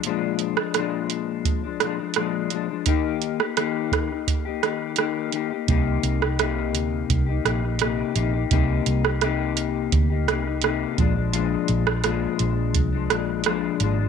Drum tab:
HH |x-x-x-x-x-x-x-x-|x-x-x-x-x-x-x-x-|x-x-x-x-x-x-x-x-|x-x-x-x-x-x-x-x-|
SD |---rr-----r-r---|---rr-r---r-r---|---rr-----r-r---|---rr-----r-r---|
BD |--------o-------|o-----o-o-------|o-------o-------|o-------o-----o-|

HH |x-x-x-x-x-x-x-x-|
SD |---rr-----r-r---|
BD |--------o-------|